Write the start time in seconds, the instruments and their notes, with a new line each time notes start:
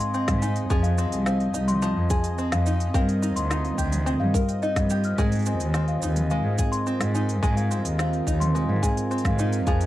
Already playing: five-string banjo G#3 C4 G#4, analog synth pad C4 F4 A#4 D#5, celesta F5 G#5
0.00 celesta C6, open hi-hat, cabasa
0.14 five-string banjo C4, cabasa
0.28 cello G#2, kick, snare, mid tom, open hi-hat, cabasa
0.42 five-string banjo D#4, celesta G#5, cabasa
0.56 open hi-hat, cabasa
0.70 cello F2, five-string banjo F3 G#4, analog synth pad C4, kick, cabasa
0.83 celesta F5, open hi-hat, cabasa
0.98 five-string banjo C4, cabasa
1.12 cello C2, open hi-hat, cabasa
1.26 five-string banjo C4, celesta F5, snare, cabasa
1.40 open hi-hat
1.54 cello C2, five-string banjo D#4, cabasa
1.68 celesta C6, mid tom, open hi-hat, cabasa
1.82 five-string banjo F3, cabasa
1.96 cello F2
2.10 five-string banjo G#4, celesta G#5, kick, cabasa
2.24 open hi-hat, cabasa
2.38 five-string banjo C4, cabasa
2.52 cello F2, celesta F5, snare, open hi-hat, cabasa
2.66 five-string banjo D#4, cabasa
2.80 open hi-hat, cabasa
2.94 cello G2, five-string banjo C4 A#4, celesta F5, kick, cabasa
3.08 analog synth pad F4, open hi-hat, cabasa
3.22 five-string banjo D#4, cabasa
3.36 cello D2, celesta C6, open hi-hat, cabasa
3.50 five-string banjo D#4, snare, cabasa
3.65 open hi-hat
3.78 cello D2, five-string banjo G4, celesta G5, kick, cabasa
3.91 analog synth pad A#4, mid tom, open hi-hat, cabasa
4.06 five-string banjo C4, cabasa
4.20 cello G2, celesta F5, mid tom
4.34 five-string banjo A#4, kick, cabasa
4.49 open hi-hat, cabasa
4.62 five-string banjo D#4, celesta D#5, cabasa
4.76 cello G2, kick, snare, mid tom, open hi-hat, cabasa
4.80 mid tom
4.83 mid tom
4.87 mid tom, cabasa
4.91 five-string banjo G4
5.04 celesta F6, open hi-hat, cabasa
5.18 cello G#2, five-string banjo G#3 G#4, kick, cabasa
5.32 open hi-hat, cabasa
5.35 open hi-hat
5.39 open hi-hat
5.42 celesta G#5, open hi-hat, cabasa
5.47 five-string banjo C4
5.60 cello D#2, open hi-hat, cabasa
5.74 five-string banjo C4, snare, cabasa
5.88 celesta F5, open hi-hat
6.02 cello D#2, five-string banjo D#4, cabasa
6.16 mid tom, open hi-hat, cabasa
6.30 five-string banjo G#3, celesta F5, cabasa
6.44 cello G#2
6.58 five-string banjo G#4, kick, cabasa
6.72 celesta C6, open hi-hat, cabasa
6.87 five-string banjo C4, cabasa
7.00 cello G#2, snare, open hi-hat, cabasa
7.14 five-string banjo D#4, celesta G#5, cabasa
7.29 open hi-hat, cabasa
7.43 cello G#2, five-string banjo G#3 G#4, kick, cabasa
7.56 celesta F5, open hi-hat, cabasa
7.71 five-string banjo C4, cabasa
7.84 cello D#2, open hi-hat, cabasa
7.98 five-string banjo C4, celesta F5, snare, cabasa
8.13 open hi-hat
8.27 cello D#2, five-string banjo D#4, kick, cabasa
8.40 celesta C6, mid tom, open hi-hat
8.55 five-string banjo G#3, cabasa
8.68 cello G#2, mid tom
8.83 five-string banjo G#4, celesta G#5, kick, cabasa
8.97 open hi-hat, cabasa
9.11 five-string banjo C4, cabasa
9.18 open hi-hat
9.25 cello G#2, celesta F5, kick, snare, mid tom, cabasa
9.39 five-string banjo D#4, cabasa
9.53 open hi-hat, cabasa
9.67 cello F2, five-string banjo F3 G#4, celesta F5, kick, cabasa
9.81 open hi-hat, cabasa